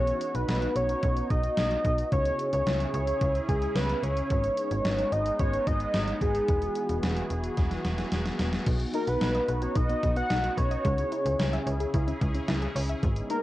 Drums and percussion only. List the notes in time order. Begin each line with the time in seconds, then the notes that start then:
0.07 closed hi-hat
0.21 closed hi-hat
0.35 closed hi-hat
0.49 snare, closed hi-hat
0.62 closed hi-hat
0.76 closed hi-hat
0.89 closed hi-hat
1.03 kick, closed hi-hat
1.17 closed hi-hat
1.30 kick, closed hi-hat
1.44 closed hi-hat
1.57 snare, closed hi-hat
1.71 closed hi-hat
1.85 kick, closed hi-hat
1.98 closed hi-hat
2.12 kick, closed hi-hat
2.25 closed hi-hat
2.39 closed hi-hat
2.53 closed hi-hat
2.67 snare, closed hi-hat
2.80 closed hi-hat
2.94 closed hi-hat
3.07 closed hi-hat
3.21 kick, closed hi-hat
3.35 closed hi-hat
3.49 kick, closed hi-hat
3.62 closed hi-hat
3.76 snare, closed hi-hat
3.89 closed hi-hat
4.03 closed hi-hat
4.17 closed hi-hat
4.30 kick, closed hi-hat
4.44 closed hi-hat
4.57 closed hi-hat
4.71 closed hi-hat
4.85 snare, closed hi-hat
4.99 closed hi-hat
5.12 closed hi-hat
5.26 closed hi-hat
5.39 kick, closed hi-hat
5.53 closed hi-hat
5.67 kick, closed hi-hat
5.80 closed hi-hat
5.94 snare, closed hi-hat
6.08 closed hi-hat
6.21 kick, closed hi-hat
6.35 closed hi-hat
6.48 kick, closed hi-hat
6.62 closed hi-hat
6.75 closed hi-hat
6.89 closed hi-hat
7.03 snare, closed hi-hat
7.17 closed hi-hat
7.30 closed hi-hat
7.44 closed hi-hat
7.57 kick, snare, closed hi-hat
7.71 snare, closed hi-hat
7.85 snare, closed hi-hat
7.98 snare, closed hi-hat
8.12 snare, closed hi-hat
8.26 snare, closed hi-hat
8.39 snare, closed hi-hat
8.53 snare, closed hi-hat
8.66 kick, closed hi-hat, crash
8.80 closed hi-hat
8.94 closed hi-hat
9.07 closed hi-hat
9.21 snare, closed hi-hat
9.35 closed hi-hat
9.48 closed hi-hat
9.62 closed hi-hat
9.76 kick, closed hi-hat
9.89 closed hi-hat
10.03 kick, closed hi-hat
10.16 closed hi-hat
10.30 snare, closed hi-hat
10.44 closed hi-hat
10.57 kick, closed hi-hat
10.71 closed hi-hat
10.85 kick, closed hi-hat
10.98 closed hi-hat
11.12 closed hi-hat
11.26 closed hi-hat
11.39 snare, closed hi-hat
11.53 closed hi-hat
11.67 closed hi-hat
11.80 closed hi-hat
11.94 kick, closed hi-hat
12.08 closed hi-hat
12.21 kick, closed hi-hat
12.35 closed hi-hat
12.48 snare, closed hi-hat
12.62 closed hi-hat
12.76 open hi-hat
12.89 closed hi-hat
13.03 kick, closed hi-hat
13.16 closed hi-hat
13.30 closed hi-hat